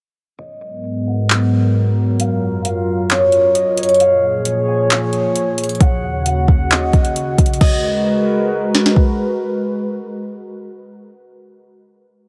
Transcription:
0.39 G#2 F#3 B3 A#4 D#5
1.07 F#5
1.30 clap
2.20 F#2 F4 F5, closed hi-hat
2.64 F5, closed hi-hat
3.10 C#5, clap, closed hi-hat
3.32 closed hi-hat
3.54 D#5, closed hi-hat
3.77 C#5, closed hi-hat
3.83 closed hi-hat
3.89 closed hi-hat
3.94 closed hi-hat
4.00 A#2 F3 G#4 C#5 F5, closed hi-hat
4.45 closed hi-hat
4.68 G#5
4.90 clap, closed hi-hat
5.13 closed hi-hat
5.36 closed hi-hat
5.58 closed hi-hat
5.64 closed hi-hat
5.69 closed hi-hat
5.75 closed hi-hat
5.80 D#2 C#3 F#4 F#5, kick, closed hi-hat
6.26 F#5, closed hi-hat
6.48 kick
6.71 D#5, clap, closed hi-hat
6.93 kick, closed hi-hat
7.05 closed hi-hat
7.16 closed hi-hat
7.38 kick, closed hi-hat
7.46 closed hi-hat
7.54 closed hi-hat
7.61 G#3 F#4 A#4 B4 D#5, kick, crash
8.75 snare
8.86 snare
8.96 kick

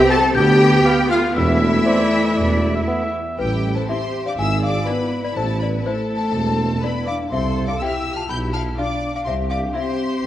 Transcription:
Already playing: C4 G4 G5
0.09 C4 A4 A5 A6
0.34 D2 B3 G4 G5 G6
0.85 B3 F5
1.08 A3 F4 F5 F6
1.35 E1 E2 E3 A3 E4 E5 E6
1.86 C4 D5
2.25 E5
2.37 E1 E2 D5
2.75 E5
2.87 B3 E5
3.38 A1 G3 E4 G4 B4 G5
3.76 A3 A4 C5 A5
3.88 C4 E4 G4 C5 E5 C6
4.25 D4 D5 F5 D6
4.37 G#1 E4 G#4 E5 G#5 E6
4.61 D4 D5 F5 D6
4.87 B3 D4 E4 B4 D5 B5
5.23 B3 B4 D5 B5
5.35 A1 A3 A4 C5 A5
5.59 B3 B4 D5 B5
5.85 A3 C4 E4 A4 C5 A5
6.33 E1 C4
6.82 B3 C4 E4 B4 D5 B5
7.06 D4 D5 F5 D6
7.30 C2 C4 A4 C5 E5 C6
7.68 D4 D5 F5 D6
7.79 C4 E4 G4 E5 G5 E6
7.86 F6
7.93 E6
8.16 F4 F5 A5 F6
8.28 B1 E4 G4 G5 B5 G6
8.53 F4 F5 A5 F6
8.77 D4 F4 D5 F5 D6
9.15 D4 D5 F5 D6
9.25 C2 C4 G4 C5 E5 C6
9.50 D4 D5 F5 D6
9.74 C4 E4 C5 E5 C6
10.23 G1

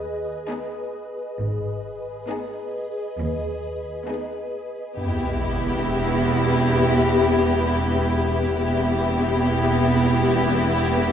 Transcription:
Already playing: D#2 G#4 B4 D#5
0.49 B3 D#4 G#4
1.38 G#1 G#2 G#4 B4 D#5
2.28 B3 D#4 G#4
3.18 D#2
4.08 B3 D#4 G#4
4.97 E1 E2 B3 E4 G4 B4 E5, sub drop
8.56 E1 E2 B3 E4 G4 B4 E5

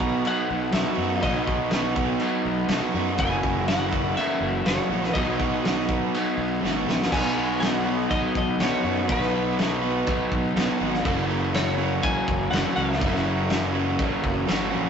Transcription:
Already playing: B1 B2 F#3 B3 F#4 A#5
0.00 B3 D#4, kick
0.23 B2 F#3 B3 F#5, crash
0.47 B1 F#3 B3
0.72 B1 B2 F#3 B3 D#4 F#4 E5, snare, crash
0.76 B3
0.94 F#2 B3 D#4 F#4
1.21 B1 B2 F#3 B3 D#4 F#4 D#5, kick, crash
1.47 D#4 F#4, kick
1.51 B3
1.71 B2 F#3 B3 D#4 F#4, snare, crash
1.75 B3
1.95 B3 D#4 F#4, kick
2.20 B2 F#3 B3, crash
2.45 B1 F#3 B3
2.69 B1 B2 F#3 B3 D#4, snare, crash
2.74 F#4
2.94 F#2 B3 D#4 F#4
3.18 F#1 F#2 C#3 E3 A#3 G#5, kick, crash
3.22 F#3 E4 F#4
3.43 E3 A#3 E4 F#4, kick
3.67 F#2 C#3 E3 A#3 E4 F#4 F#5, snare, crash
3.71 F#3
3.91 E3 A#3 E4 F#4, kick
4.16 F#2 C#3 F#3 E5, crash
4.40 F#1 F#3
4.45 C#3
4.65 F#1 F#2 C#3 E3 F#3 A#3 E4 F#4 C#5, snare, crash
4.89 A#1 A#3 E4 F#4
4.93 E3
5.03 snare
5.13 B1 B2 F#3 B3 D#5, kick, crash
5.17 D#4 F#4
5.40 B3 D#4 F#4, kick
5.63 B2 F#3 B3, snare, crash
5.67 D#4 F#4
5.89 B3 D#4 F#4, kick
6.13 B2 F#3 B3, crash
6.37 B1 F#3 B3
6.61 G#1 B2 F#3 B3 D#4, snare
6.65 B3 F#4
6.86 A#1 B3 D#4 F#4, snare
7.02 snare
7.11 B1 B2 F#3 B3 D#4 G#5, kick, crash
7.15 B3 F#4
7.37 B3 D#4 F#4
7.60 B2 F#3 B3 D#4 F#4 F#5, snare, crash
7.65 B3
7.85 D#4 F#4
7.89 B3
8.10 B2 F#3 B3 D#5, kick, crash
8.35 B1 F#3 B3 D#5, kick
8.59 B1 B2 F#3 B3 D#4 F#4 C#5, snare, crash
8.84 F#2 D#4 F#4
8.88 B3
9.09 B1 B2 F#3 B3 D#4 F#4 B4, kick, crash
9.22 snare
9.33 B3 D#4 F#4
9.57 B2 F#3 B3, snare, crash
9.61 D#4 F#4
9.82 B3 D#4 F#4
10.06 B2 F#3 B3, kick, crash
10.32 B1 F#3 B3, kick
10.56 B1 B2 F#3 B3 D#4 F#4, snare, crash
10.80 G#1 B3 D#4 F#4
10.94 snare
11.03 F#1 F#2 C#3 E3 A#3 C#4 F#4, kick, crash
11.08 F#3
11.29 E3 A#3 C#4 F#4
11.53 F#2 C#3 E3 A#3 C#4 F#4 C#5, snare, crash
11.57 F#3
11.77 E3 A#3 C#4 F#4
12.03 F#2 C#3 F#3 G#5, kick, crash
12.28 F#1 C#3 F#3, kick
12.50 F#1 F#2 C#3 E3 A#3 C#4 F#4 F#5, snare, crash
12.55 F#3
12.75 C#2 E3 A#3 C#4 F#4 E5
12.92 snare
12.98 F#1 F#2 C#3 E3 A#3 C#4 F#4, kick, crash
13.03 F#3
13.15 snare
13.24 E3 A#3 C#4 F#4
13.48 F#2 C#3 E3 F#3 A#3 C#4, snare, crash
13.52 F#4
13.72 E3 A#3 C#4 F#4
13.98 F#2 C#3 F#3, kick, crash
14.22 F#1 C#3 F#3, kick
14.46 G#1 F#2 C#3 E3 F#3 A#3 C#4 F#4, snare, crash
14.70 A#3 C#4 F#4
14.74 A#1 E3

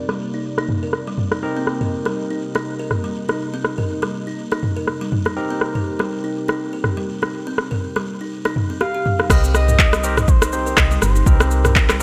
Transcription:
Already playing: C3 A#3 C4 D#4 G4 A#4 D5
0.09 G3, cross-stick
0.20 cabasa
0.33 D#4, cabasa
0.58 D#4, cross-stick
0.69 mid tom
0.83 A#4
0.93 cross-stick, cabasa
1.07 G3
1.18 mid tom, cabasa
1.32 D#4, cross-stick, cabasa
1.42 C4 D#4 G4 A#4
1.57 C4
1.67 cross-stick, cabasa
1.81 A#4, mid tom
1.92 cabasa
2.05 G3, cross-stick
2.17 cabasa
2.30 D#4
2.55 D#4, cross-stick, cabasa
2.66 cabasa
2.79 A#4, cabasa
2.91 cross-stick, mid tom, cabasa
3.04 G3, cabasa
3.15 cabasa
3.29 D#4, cross-stick, cabasa
3.40 cabasa
3.54 C4
3.64 cross-stick, cabasa
3.78 A#4, mid tom, cabasa
3.89 cabasa
4.02 G3, cross-stick, cabasa
4.14 cabasa
4.27 D#4, cabasa
4.38 cabasa
4.52 D#4, cross-stick, cabasa
4.63 mid tom, cabasa
4.77 A#4, cabasa
4.87 cross-stick, cabasa
5.01 G3
5.12 mid tom, cabasa
5.25 D#4, cross-stick, cabasa
5.36 C4 D#4 G4 A#4, cabasa
5.51 C4, cabasa
5.61 cross-stick, cabasa
5.75 A#4, mid tom, cabasa
5.86 cabasa
5.99 G3, cross-stick, cabasa
6.11 cabasa
6.24 D#4, cabasa
6.35 cabasa
6.48 D#4, cross-stick, cabasa
6.60 cabasa
6.73 A#4, cabasa
6.84 cross-stick, mid tom, cabasa
6.97 G3, cabasa
7.09 cabasa
7.22 D#4, cross-stick, cabasa
7.34 cabasa
7.47 C4, cabasa
7.58 cross-stick, cabasa
7.71 A#4, mid tom, cabasa
7.83 cabasa
7.96 G3, cross-stick, cabasa
8.07 cabasa
8.21 D#4, cabasa
8.32 cabasa
8.45 D#4, cross-stick, cabasa
8.56 mid tom, cabasa
8.70 C4, cabasa
8.80 G4 F5, cross-stick, cabasa
8.95 G4, cabasa
9.05 G3, mid tom, cabasa
9.19 D#4, cross-stick, cabasa
9.30 C2 C4 D#4 G4 A#4 D#5, kick, cross-stick, crash, cabasa
9.44 C4, cabasa
9.55 D#5, cross-stick, cabasa
9.68 A#4, mid tom, cabasa
9.79 kick, clap, cabasa
9.93 G3, cross-stick, cabasa
10.03 C4 D#4 G4 A#4 C5, cabasa
10.17 D#4, cross-stick, mid tom, cabasa
10.22 D#5
10.28 C5, kick, cabasa
10.42 D#4, cross-stick, cabasa
10.53 C4 D#4 G4 C5, cabasa
10.66 A#4, cabasa
10.77 C2 D#5, kick, cross-stick, clap, cabasa
10.91 G3, cabasa
11.02 G1 C5, cross-stick, cabasa
11.16 D#4, cabasa
11.26 C2 C4 D#4 G4 A#4, kick, cabasa
11.40 C4, cross-stick, cabasa
11.51 cabasa
11.65 A#4, cross-stick, mid tom, cabasa
11.76 kick, clap, cabasa
11.89 G3, cross-stick, clap, cabasa

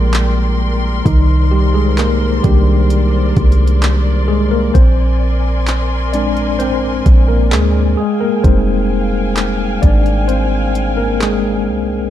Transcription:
Already playing: A#1 G#3 A#3 G#4 A#4 D5 G5 C6
0.13 clap, closed hi-hat
1.05 C2 D#3 D#4 C5 D5, kick, closed hi-hat
1.51 G3 G4
1.74 G#3 G#4
1.97 A#3 A#4, clap, closed hi-hat
2.44 C2 D#3 G3 A#3 D4 G4, kick, closed hi-hat
2.90 closed hi-hat
3.37 C2, kick, closed hi-hat
3.52 closed hi-hat
3.67 closed hi-hat
3.82 clap, closed hi-hat
4.28 G#3 G#4
4.51 A#3 A#4
4.74 A#1 C4 A#4 C5 G#5 C6, kick, closed hi-hat
5.67 clap, closed hi-hat
6.13 G#3 C4 D4 D5, closed hi-hat
6.37 closed hi-hat
6.59 C4 C5, closed hi-hat
7.06 A#1, kick, closed hi-hat
7.28 A#3 A#4
7.51 D2 G#3 G#4, clap, closed hi-hat
7.97 G#3 G#4 F5 G5 G#5
8.20 A#3 A#4
8.43 F1 G3 G#3 C4 D#4 C5, kick, closed hi-hat
9.37 clap, closed hi-hat
9.82 G#1 D4 D5, kick, closed hi-hat
10.06 closed hi-hat
10.28 C4 C5, closed hi-hat
10.75 closed hi-hat
10.97 A#3 A#4
11.20 G#3 G#4, clap, closed hi-hat
11.68 C2

